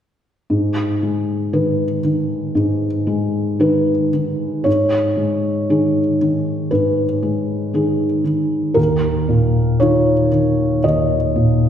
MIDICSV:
0, 0, Header, 1, 2, 480
1, 0, Start_track
1, 0, Key_signature, 5, "minor"
1, 0, Tempo, 1030928
1, 234, Time_signature, 4, 2, 24, 8
1, 1670, Tempo, 1054482
1, 2630, Tempo, 1025641
1, 5437, End_track
2, 0, Start_track
2, 0, Title_t, "Felt piano"
2, 0, Program_c, 0, 0
2, 232, Note_on_c, 0, 44, 45
2, 332, Control_c, 0, 64, 127
2, 478, Note_on_c, 0, 56, 33
2, 713, Note_on_c, 0, 51, 35
2, 714, Note_on_c, 0, 63, 33
2, 715, Note_on_c, 0, 71, 39
2, 858, Note_off_c, 0, 56, 0
2, 931, Note_off_c, 0, 51, 0
2, 932, Note_off_c, 0, 63, 0
2, 932, Note_off_c, 0, 71, 0
2, 952, Note_on_c, 0, 51, 39
2, 1168, Note_off_c, 0, 44, 0
2, 1187, Note_on_c, 0, 44, 45
2, 1331, Note_off_c, 0, 51, 0
2, 1428, Note_on_c, 0, 56, 43
2, 1674, Note_on_c, 0, 51, 46
2, 1676, Note_on_c, 0, 63, 42
2, 1679, Note_on_c, 0, 71, 50
2, 1819, Note_off_c, 0, 56, 0
2, 1900, Note_off_c, 0, 51, 0
2, 1901, Note_off_c, 0, 63, 0
2, 1902, Note_off_c, 0, 71, 0
2, 1920, Note_on_c, 0, 51, 41
2, 2142, Note_off_c, 0, 44, 0
2, 2149, Note_on_c, 0, 73, 65
2, 2156, Note_on_c, 0, 44, 43
2, 2161, Note_off_c, 0, 51, 0
2, 2169, Control_c, 0, 64, 0
2, 2255, Control_c, 0, 64, 127
2, 2389, Note_on_c, 0, 56, 34
2, 2630, Note_on_c, 0, 51, 33
2, 2632, Note_on_c, 0, 63, 33
2, 2633, Note_on_c, 0, 68, 36
2, 2773, Note_off_c, 0, 56, 0
2, 2853, Note_off_c, 0, 51, 0
2, 2854, Note_off_c, 0, 63, 0
2, 2855, Note_off_c, 0, 68, 0
2, 2875, Note_on_c, 0, 51, 34
2, 3091, Note_off_c, 0, 44, 0
2, 3104, Note_on_c, 0, 71, 47
2, 3107, Note_off_c, 0, 73, 0
2, 3110, Note_on_c, 0, 44, 39
2, 3256, Note_off_c, 0, 51, 0
2, 3346, Note_on_c, 0, 56, 35
2, 3585, Note_on_c, 0, 51, 34
2, 3588, Note_on_c, 0, 63, 31
2, 3591, Note_on_c, 0, 68, 37
2, 3732, Note_off_c, 0, 56, 0
2, 3809, Note_off_c, 0, 51, 0
2, 3811, Note_off_c, 0, 63, 0
2, 3812, Note_off_c, 0, 68, 0
2, 3822, Note_on_c, 0, 51, 34
2, 4053, Note_off_c, 0, 44, 0
2, 4056, Note_on_c, 0, 70, 60
2, 4066, Note_on_c, 0, 39, 43
2, 4068, Note_off_c, 0, 51, 0
2, 4068, Note_off_c, 0, 71, 0
2, 4080, Control_c, 0, 64, 0
2, 4152, Control_c, 0, 64, 127
2, 4310, Note_on_c, 0, 46, 35
2, 4547, Note_off_c, 0, 70, 0
2, 4550, Note_on_c, 0, 73, 67
2, 4554, Note_on_c, 0, 51, 36
2, 4556, Note_on_c, 0, 63, 36
2, 4558, Note_on_c, 0, 65, 40
2, 4696, Note_off_c, 0, 46, 0
2, 4775, Note_off_c, 0, 51, 0
2, 4776, Note_off_c, 0, 63, 0
2, 4777, Note_off_c, 0, 65, 0
2, 4796, Note_on_c, 0, 51, 37
2, 5012, Note_off_c, 0, 39, 0
2, 5032, Note_off_c, 0, 73, 0
2, 5037, Note_on_c, 0, 75, 55
2, 5041, Note_on_c, 0, 39, 40
2, 5179, Note_off_c, 0, 51, 0
2, 5279, Note_on_c, 0, 46, 37
2, 5437, Note_off_c, 0, 39, 0
2, 5437, Note_off_c, 0, 46, 0
2, 5437, Note_off_c, 0, 75, 0
2, 5437, End_track
0, 0, End_of_file